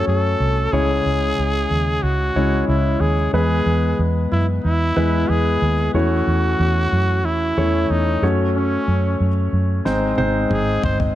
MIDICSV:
0, 0, Header, 1, 5, 480
1, 0, Start_track
1, 0, Key_signature, 4, "minor"
1, 0, Tempo, 652174
1, 535, Time_signature, 4, 2, 24, 8
1, 8206, End_track
2, 0, Start_track
2, 0, Title_t, "Trumpet"
2, 0, Program_c, 0, 56
2, 60, Note_on_c, 0, 69, 75
2, 533, Note_on_c, 0, 68, 83
2, 544, Note_off_c, 0, 69, 0
2, 1493, Note_on_c, 0, 66, 85
2, 1504, Note_off_c, 0, 68, 0
2, 1971, Note_off_c, 0, 66, 0
2, 1975, Note_on_c, 0, 64, 65
2, 2212, Note_on_c, 0, 68, 76
2, 2223, Note_off_c, 0, 64, 0
2, 2453, Note_off_c, 0, 68, 0
2, 2457, Note_on_c, 0, 68, 77
2, 2948, Note_off_c, 0, 68, 0
2, 3181, Note_on_c, 0, 64, 66
2, 3287, Note_off_c, 0, 64, 0
2, 3421, Note_on_c, 0, 64, 84
2, 3899, Note_on_c, 0, 68, 74
2, 3910, Note_off_c, 0, 64, 0
2, 4374, Note_off_c, 0, 68, 0
2, 4378, Note_on_c, 0, 66, 78
2, 5337, Note_on_c, 0, 64, 84
2, 5348, Note_off_c, 0, 66, 0
2, 5820, Note_on_c, 0, 63, 67
2, 5831, Note_off_c, 0, 64, 0
2, 6099, Note_off_c, 0, 63, 0
2, 6298, Note_on_c, 0, 61, 62
2, 6747, Note_off_c, 0, 61, 0
2, 7740, Note_on_c, 0, 68, 69
2, 7961, Note_off_c, 0, 68, 0
2, 7982, Note_on_c, 0, 72, 67
2, 8089, Note_off_c, 0, 72, 0
2, 8206, End_track
3, 0, Start_track
3, 0, Title_t, "Grand piano"
3, 0, Program_c, 1, 0
3, 0, Control_c, 1, 64, 127
3, 0, Note_on_c, 1, 57, 54
3, 0, Note_on_c, 1, 61, 53
3, 0, Note_on_c, 1, 66, 54
3, 0, Note_on_c, 1, 73, 58
3, 386, Note_off_c, 1, 57, 0
3, 386, Note_off_c, 1, 61, 0
3, 386, Note_off_c, 1, 66, 0
3, 386, Note_off_c, 1, 73, 0
3, 535, Note_on_c, 1, 56, 57
3, 537, Note_on_c, 1, 61, 53
3, 539, Note_on_c, 1, 49, 49
3, 539, Note_on_c, 1, 64, 58
3, 539, Note_on_c, 1, 73, 60
3, 546, Control_c, 1, 64, 0
3, 684, Control_c, 1, 64, 127
3, 1227, Note_off_c, 1, 49, 0
3, 1298, Note_off_c, 1, 56, 0
3, 1299, Note_off_c, 1, 61, 0
3, 1300, Note_off_c, 1, 64, 0
3, 1300, Note_off_c, 1, 73, 0
3, 1738, Note_on_c, 1, 64, 58
3, 1739, Note_on_c, 1, 56, 58
3, 1739, Note_on_c, 1, 61, 52
3, 1739, Note_on_c, 1, 73, 65
3, 2309, Note_off_c, 1, 56, 0
3, 2309, Note_off_c, 1, 61, 0
3, 2309, Note_off_c, 1, 64, 0
3, 2309, Note_off_c, 1, 73, 0
3, 2455, Note_on_c, 1, 56, 58
3, 2455, Note_on_c, 1, 64, 49
3, 2457, Note_on_c, 1, 52, 51
3, 2457, Note_on_c, 1, 59, 52
3, 2458, Note_on_c, 1, 71, 66
3, 2465, Control_c, 1, 64, 0
3, 2605, Control_c, 1, 64, 127
3, 3147, Note_off_c, 1, 52, 0
3, 3218, Note_off_c, 1, 56, 0
3, 3218, Note_off_c, 1, 64, 0
3, 3219, Note_off_c, 1, 59, 0
3, 3219, Note_off_c, 1, 71, 0
3, 3653, Note_on_c, 1, 59, 56
3, 3653, Note_on_c, 1, 64, 56
3, 3654, Note_on_c, 1, 56, 62
3, 3655, Note_on_c, 1, 71, 70
3, 4226, Note_off_c, 1, 59, 0
3, 4226, Note_off_c, 1, 64, 0
3, 4227, Note_off_c, 1, 56, 0
3, 4227, Note_off_c, 1, 71, 0
3, 4376, Note_on_c, 1, 52, 54
3, 4376, Note_on_c, 1, 57, 57
3, 4377, Note_on_c, 1, 61, 57
3, 4377, Note_on_c, 1, 64, 52
3, 4378, Note_on_c, 1, 73, 66
3, 4383, Control_c, 1, 64, 0
3, 4520, Control_c, 1, 64, 127
3, 5066, Note_off_c, 1, 52, 0
3, 5138, Note_off_c, 1, 57, 0
3, 5139, Note_off_c, 1, 61, 0
3, 5139, Note_off_c, 1, 64, 0
3, 5139, Note_off_c, 1, 73, 0
3, 5576, Note_on_c, 1, 57, 59
3, 5576, Note_on_c, 1, 61, 52
3, 5577, Note_on_c, 1, 52, 56
3, 5578, Note_on_c, 1, 73, 70
3, 6045, Note_off_c, 1, 57, 0
3, 6045, Note_off_c, 1, 61, 0
3, 6047, Note_off_c, 1, 73, 0
3, 6056, Note_off_c, 1, 52, 0
3, 6056, Note_on_c, 1, 57, 62
3, 6056, Note_on_c, 1, 61, 67
3, 6057, Note_on_c, 1, 66, 55
3, 6058, Note_on_c, 1, 73, 70
3, 6064, Control_c, 1, 64, 0
3, 6204, Control_c, 1, 64, 127
3, 6823, Note_off_c, 1, 61, 0
3, 6824, Note_off_c, 1, 57, 0
3, 6824, Note_off_c, 1, 66, 0
3, 6824, Note_off_c, 1, 73, 0
3, 7251, Note_on_c, 1, 56, 66
3, 7252, Note_on_c, 1, 44, 60
3, 7253, Note_on_c, 1, 60, 69
3, 7253, Note_on_c, 1, 63, 64
3, 7255, Note_on_c, 1, 72, 78
3, 7264, Control_c, 1, 64, 0
3, 7388, Control_c, 1, 64, 127
3, 7445, Note_off_c, 1, 56, 0
3, 7446, Note_off_c, 1, 60, 0
3, 7446, Note_off_c, 1, 63, 0
3, 7447, Note_off_c, 1, 72, 0
3, 7489, Note_on_c, 1, 56, 64
3, 7491, Note_on_c, 1, 60, 65
3, 7491, Note_on_c, 1, 72, 86
3, 7492, Note_on_c, 1, 63, 62
3, 7944, Note_off_c, 1, 44, 0
3, 8064, Note_off_c, 1, 56, 0
3, 8065, Note_off_c, 1, 60, 0
3, 8065, Note_off_c, 1, 63, 0
3, 8065, Note_off_c, 1, 72, 0
3, 8206, End_track
4, 0, Start_track
4, 0, Title_t, "Fingered electric bass"
4, 0, Program_c, 2, 33
4, 56, Note_on_c, 2, 42, 77
4, 252, Note_off_c, 2, 42, 0
4, 296, Note_on_c, 2, 36, 72
4, 492, Note_off_c, 2, 36, 0
4, 536, Note_on_c, 2, 37, 90
4, 732, Note_off_c, 2, 37, 0
4, 777, Note_on_c, 2, 37, 76
4, 973, Note_off_c, 2, 37, 0
4, 1021, Note_on_c, 2, 37, 76
4, 1215, Note_off_c, 2, 37, 0
4, 1258, Note_on_c, 2, 39, 66
4, 1453, Note_off_c, 2, 39, 0
4, 1496, Note_on_c, 2, 37, 75
4, 1692, Note_off_c, 2, 37, 0
4, 1734, Note_on_c, 2, 37, 69
4, 1931, Note_off_c, 2, 37, 0
4, 1976, Note_on_c, 2, 37, 73
4, 2172, Note_off_c, 2, 37, 0
4, 2210, Note_on_c, 2, 39, 72
4, 2409, Note_off_c, 2, 39, 0
4, 2454, Note_on_c, 2, 40, 88
4, 2651, Note_off_c, 2, 40, 0
4, 2695, Note_on_c, 2, 40, 77
4, 2892, Note_off_c, 2, 40, 0
4, 2938, Note_on_c, 2, 40, 90
4, 3134, Note_off_c, 2, 40, 0
4, 3180, Note_on_c, 2, 42, 70
4, 3375, Note_off_c, 2, 42, 0
4, 3421, Note_on_c, 2, 40, 75
4, 3615, Note_off_c, 2, 40, 0
4, 3657, Note_on_c, 2, 40, 82
4, 3853, Note_off_c, 2, 40, 0
4, 3898, Note_on_c, 2, 40, 65
4, 4093, Note_off_c, 2, 40, 0
4, 4137, Note_on_c, 2, 39, 74
4, 4333, Note_off_c, 2, 39, 0
4, 4374, Note_on_c, 2, 40, 86
4, 4571, Note_off_c, 2, 40, 0
4, 4618, Note_on_c, 2, 40, 73
4, 4813, Note_off_c, 2, 40, 0
4, 4856, Note_on_c, 2, 40, 88
4, 5052, Note_off_c, 2, 40, 0
4, 5095, Note_on_c, 2, 42, 75
4, 5335, Note_off_c, 2, 42, 0
4, 5335, Note_on_c, 2, 40, 79
4, 5532, Note_off_c, 2, 40, 0
4, 5576, Note_on_c, 2, 40, 79
4, 5772, Note_off_c, 2, 40, 0
4, 5816, Note_on_c, 2, 40, 77
4, 6012, Note_off_c, 2, 40, 0
4, 6053, Note_on_c, 2, 42, 77
4, 6447, Note_off_c, 2, 42, 0
4, 6535, Note_on_c, 2, 42, 76
4, 6732, Note_off_c, 2, 42, 0
4, 6774, Note_on_c, 2, 42, 82
4, 6971, Note_off_c, 2, 42, 0
4, 7013, Note_on_c, 2, 42, 75
4, 7211, Note_off_c, 2, 42, 0
4, 7255, Note_on_c, 2, 32, 78
4, 7452, Note_off_c, 2, 32, 0
4, 7497, Note_on_c, 2, 32, 77
4, 7693, Note_off_c, 2, 32, 0
4, 7735, Note_on_c, 2, 32, 74
4, 7932, Note_off_c, 2, 32, 0
4, 7972, Note_on_c, 2, 31, 69
4, 8170, Note_off_c, 2, 31, 0
4, 8206, End_track
5, 0, Start_track
5, 0, Title_t, "Drums"
5, 7255, Note_on_c, 9, 38, 41
5, 7329, Note_off_c, 9, 38, 0
5, 7495, Note_on_c, 9, 48, 55
5, 7569, Note_off_c, 9, 48, 0
5, 7733, Note_on_c, 9, 47, 71
5, 7807, Note_off_c, 9, 47, 0
5, 7974, Note_on_c, 9, 43, 92
5, 8048, Note_off_c, 9, 43, 0
5, 8095, Note_on_c, 9, 43, 74
5, 8168, Note_off_c, 9, 43, 0
5, 8206, End_track
0, 0, End_of_file